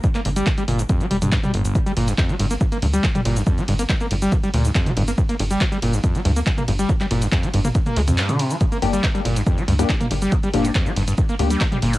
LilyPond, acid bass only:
\new Staff \with { instrumentName = "Acid bass" } { \clef bass \time 4/4 \key g \minor \tempo 4 = 140 g,16 bes16 g,16 g16 f16 g16 bes,16 g,16 f,16 g16 g16 g,16 g,16 g16 g,,16 g,,16 | f16 g16 bes,16 g,16 f,16 g16 g,16 bes16 g,16 bes16 g,16 g16 f16 g16 bes,16 g,16 | f,16 g16 g,16 bes16 g,16 bes16 g,16 g16 f16 g16 bes,16 g,16 f,16 g16 g,16 bes16 | g,16 bes16 g,16 g16 f16 g16 bes,16 g,16 f,16 g16 g,16 bes16 g,16 bes16 g,16 g16 |
f16 g16 bes,16 g,16 f,16 g16 g,16 bes16 g,16 bes16 g16 f,16 g,16 d16 c16 f16 | g,16 bes16 g,16 g16 f16 g16 bes,16 g,16 f,16 g16 g,16 g,16 g,16 bes16 g,16 g16 | f16 g16 bes,16 g,16 f,16 g16 g,16 g,16 g,16 bes16 g,16 g16 f16 g16 bes,16 g,16 | }